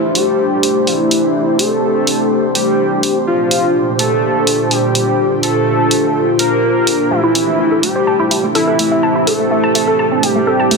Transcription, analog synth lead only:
Already playing: E4
0.15 G4
0.87 E4
1.59 A4
2.55 G4
3.27 F4
3.99 A4
4.71 G4
5.43 A4
6.39 A#4
7.11 E4
7.83 G4
8.55 E4
9.27 A4
10.23 G4

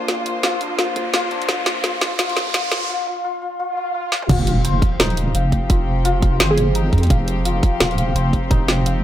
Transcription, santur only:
Already playing: D4 G#4 A#4
0.08 F4
0.44 F4
0.61 D4
0.79 F4
1.14 F4
1.31 D4
1.49 F4
1.84 F4
2.19 F4
2.54 F4
2.89 F4
3.07 F4
3.24 F4
3.42 F4
3.59 F4
3.77 F4
3.94 F4
4.12 F4
4.30 F4
4.65 C5
5.00 D#4
5.35 F5
5.70 F4
6.05 F4
6.40 C5
6.75 D#4
7.10 F5
7.45 F4
7.80 F4
8.15 C5
8.51 D#4
8.86 F5

